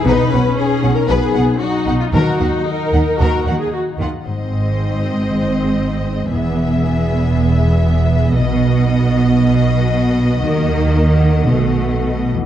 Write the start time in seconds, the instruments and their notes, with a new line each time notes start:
0.05 double bass section B1, harp B2, cello section B2, viola section D#4, violin section B4
0.31 double bass section B1, cello section B2, viola section C#4, harp D#4, violin section F#5
0.57 harp C#4, violin section G#4
0.82 double bass section B1, cello section B2, harp D#4, violin section F#5
0.95 violin section A#4
1.08 double bass section B1, cello section B2, harp F#3, viola section B3, violin section G#4 B4
1.34 double bass section B1, cello section B2, harp D#4, violin section F#5
1.60 harp C#4, viola section D#4, violin section F#4
1.86 double bass section B1, cello section B2, harp D#4, violin section F#5
2.00 violin section F4
2.13 double bass section D#2, harp D#3, cello section D#3, violin section D#4 A#4, viola section F#4
2.39 double bass section D#2, cello section D#3, harp F#4, violin section F#5
2.66 harp F4, viola section A#4
2.93 double bass section D#2, cello section D#3, harp F#4, violin section F#5
3.19 double bass section D#2, cello section D#3, harp A#3, viola section F#4, violin section A#4
3.46 double bass section D#2, cello section D#3, harp F#4, violin section F#5
3.60 viola section G#4
3.73 harp F4, viola section F#4
3.99 double bass section D#2, cello section D#3, viola section F4, harp F#4, violin section F#5
4.26 double bass section G#1, harp G#2, cello section G#2, viola section C4, violin section C5 D#5
4.43 harp C4
4.61 harp G#4
4.78 harp C5
4.95 harp D#5
5.12 harp G#4
5.29 harp D#3
5.47 harp C4
5.64 harp G#4
5.81 harp C5
5.98 harp D#5
6.15 harp G#4
6.32 double bass section E1, cello section E2, harp E2, viola section B3, violin section G#4 E5
6.50 harp B3
6.67 harp G#4
6.84 harp B4
7.01 harp E5
7.17 harp G#4
7.34 harp B2
7.52 harp B3
7.69 harp G#4
7.86 harp B4
8.02 harp E5
8.20 harp G#4
8.36 double bass section B1, cello section B2, harp B2, violin section F#4 D#5
8.55 harp B3
8.72 harp F#4
8.88 harp B4
9.06 harp D#5
9.23 harp F#4
9.39 harp F#3
9.56 harp B3
9.73 harp F#4
9.90 harp B4
10.07 harp D#5
10.24 harp F#4
10.42 double bass section D#2, harp D#3, cello section D#3, viola section A#3
10.59 harp D#4
10.77 harp A#4
10.94 harp D#5
11.11 harp F#5
11.29 harp A#4
11.46 double bass section B1, cello section B2, harp B2, viola section A3
11.63 harp A3
11.81 harp F#4
11.99 harp A4
12.16 harp D#5
12.33 harp E2 F#4
12.38 harp B3
12.42 harp E3